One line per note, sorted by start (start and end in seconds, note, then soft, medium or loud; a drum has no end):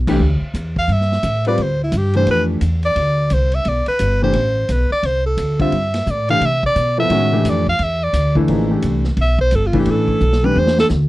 0.00 0.19 B1 medium
0.07 0.19 E3 medium
0.07 0.20 A3 medium
0.07 0.20 D4 medium
0.07 0.20 G4 loud
0.07 kick medium
0.07 crash medium
0.20 0.40 D2 medium
0.41 muted upright bass stroke soft
0.54 0.87 E2 medium
0.54 hi-hat pedal medium
0.54 ride medium
0.76 0.94 F5 medium
0.76 kick medium
0.88 1.22 G2 medium
0.88 ride medium
0.92 1.47 E5 medium
1.01 snare soft
1.12 snare soft
1.23 1.57 A2 medium
1.23 hi-hat pedal medium
1.23 ride medium
1.45 1.57 G3 medium
1.45 1.58 C4 medium
1.45 1.58 F4 medium
1.45 1.58 B4 medium
1.45 1.64 D5 medium
1.45 ride soft
1.58 1.91 D2 medium
1.58 ride medium
1.63 1.82 C5 medium
1.84 1.99 E4 medium
1.92 2.26 G2 medium
1.92 hi-hat pedal medium
1.92 ride medium
1.97 2.16 G4 medium
2.13 2.60 E3 medium
2.13 2.60 A3 medium
2.13 2.60 D4 medium
2.13 2.60 G4 medium
2.13 2.28 C5 loud
2.13 ride soft
2.27 2.61 F2 medium
2.27 ride medium
2.31 2.43 B4 loud
2.61 2.95 E2 medium
2.61 hi-hat pedal medium
2.61 ride medium
2.83 3.35 D5 loud
2.83 ride soft
2.96 3.29 D2 medium
2.96 ride medium
3.30 3.64 C2 medium
3.30 3.56 C5 medium
3.30 hi-hat pedal soft
3.30 ride medium
3.52 3.70 E5 loud
3.52 ride soft
3.65 3.86 B1 medium
3.65 3.87 D5 loud
3.65 ride medium
3.86 4.20 B4 loud
3.86 muted upright bass stroke soft
3.86 ride soft
3.99 4.33 G1 medium
3.99 hi-hat pedal medium
3.99 ride medium
4.22 4.34 E3 medium
4.22 4.34 A3 medium
4.22 4.34 D4 medium
4.22 4.34 G4 medium
4.22 4.74 C5 loud
4.33 4.68 A1 medium
4.33 ride medium
4.69 4.89 B1 medium
4.69 4.92 B4 medium
4.69 hi-hat pedal medium
4.69 ride medium
4.90 5.07 D5 loud
4.90 muted upright bass stroke soft
5.03 5.36 C2 medium
5.03 5.25 C5 medium
5.03 ride medium
5.26 5.58 A4 medium
5.37 5.71 D2 medium
5.37 hi-hat pedal medium
5.37 ride medium
5.59 5.72 D3 medium
5.59 5.72 G3 medium
5.59 5.72 C4 medium
5.59 5.72 F4 medium
5.59 6.12 E5 medium
5.59 kick medium
5.59 ride soft
5.72 6.06 G2 medium
5.72 ride medium
5.94 snare medium
5.94 ride medium
6.06 6.40 A2 medium
6.06 6.30 D5 medium
6.06 hi-hat pedal medium
6.29 6.41 E3 medium
6.29 6.41 A3 medium
6.29 6.41 D4 medium
6.29 6.41 G4 medium
6.29 6.47 F5 loud
6.29 ride soft
6.41 6.75 C3 medium
6.41 ride medium
6.45 6.65 E5 loud
6.63 6.97 D5 loud
6.63 kick medium
6.76 7.09 B2 medium
6.76 hi-hat pedal medium
6.76 ride medium
6.98 7.09 F3 medium
6.98 7.10 B3 medium
6.98 7.10 E4 medium
6.98 7.10 A4 medium
6.98 7.51 E5 loud
7.10 7.43 A2 medium
7.10 7.30 D#3 medium
7.10 7.30 G#3 medium
7.10 7.30 C#4 medium
7.10 7.31 F#4 medium
7.10 ride medium
7.32 7.62 E3 medium
7.32 7.63 A3 medium
7.32 7.63 D4 medium
7.32 7.63 G4 medium
7.44 7.78 F2 medium
7.44 hi-hat pedal medium
7.44 ride medium
7.49 7.68 D5 medium
7.66 7.85 F5 loud
7.66 kick soft
7.79 8.12 E2 medium
7.79 ride medium
7.83 8.05 E5 loud
8.03 8.37 D5 medium
8.13 8.47 D2 medium
8.13 hi-hat pedal medium
8.13 ride medium
8.35 8.69 E3 medium
8.35 8.69 A3 medium
8.35 8.69 D4 medium
8.35 8.81 E4 medium
8.35 kick medium
8.48 8.82 A1 medium
8.48 8.68 F3 medium
8.48 8.68 A#3 medium
8.48 8.68 D#4 medium
8.48 8.69 G#4 medium
8.48 ride medium
8.70 9.01 E3 medium
8.70 9.01 A3 medium
8.70 9.01 D4 medium
8.70 9.01 G4 medium
8.82 9.16 C2 medium
8.82 hi-hat pedal medium
8.82 ride medium
9.04 snare soft
9.17 9.51 B1 medium
9.17 ride medium
9.21 9.40 E5 loud
9.39 9.57 C5 loud
9.39 kick medium
9.51 9.86 G1 medium
9.51 hi-hat pedal medium
9.51 ride medium
9.55 9.68 A4 medium
9.67 9.81 F4 medium
9.73 10.18 E3 medium
9.73 10.19 A3 medium
9.73 10.19 D4 medium
9.73 10.19 E4 medium
9.73 kick medium
9.73 ride soft
9.79 9.92 G4 medium
9.85 10.20 A1 medium
9.85 ride medium
9.91 10.46 A4 medium
10.08 kick medium
10.20 10.54 B1 medium
10.20 hi-hat pedal medium
10.32 snare medium
10.43 10.88 E3 medium
10.43 10.88 A3 medium
10.43 10.88 D4 medium
10.43 10.88 G4 medium
10.43 10.60 B4 loud
10.43 high tom medium
10.55 10.89 E2 medium
10.55 10.79 C5 loud
10.55 high tom medium
10.67 snare medium
10.78 10.87 A4 loud
10.78 snare loud
10.89 11.09 D2 medium
10.89 snare medium
10.89 hi-hat pedal medium